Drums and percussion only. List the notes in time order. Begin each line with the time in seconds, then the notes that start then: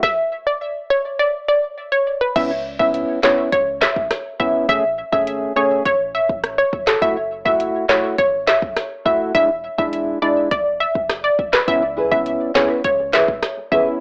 0.03 kick, snare
2.36 kick, closed hi-hat, crash
2.80 kick
2.94 closed hi-hat
3.23 snare, clap
3.52 kick, closed hi-hat
3.82 snare, clap
3.96 kick
4.11 cross-stick, snare, closed hi-hat
4.40 kick
4.69 kick, closed hi-hat
5.13 kick
5.27 closed hi-hat
5.85 kick, closed hi-hat
6.29 kick
6.44 cross-stick, closed hi-hat
6.73 kick
6.87 snare, clap
7.02 kick, closed hi-hat
7.46 kick
7.60 closed hi-hat
7.89 snare, clap
8.18 kick, closed hi-hat
8.47 snare, clap
8.62 kick
8.77 cross-stick, snare, closed hi-hat
9.06 kick
9.35 kick, closed hi-hat
9.79 kick
9.93 closed hi-hat
10.51 kick, closed hi-hat
10.95 kick
11.10 cross-stick, snare, closed hi-hat
11.39 kick
11.53 snare, clap
11.68 kick, closed hi-hat
12.12 kick
12.26 closed hi-hat
12.55 snare, clap
12.84 kick, closed hi-hat
13.13 snare, clap
13.28 kick
13.43 cross-stick, snare, closed hi-hat
13.72 kick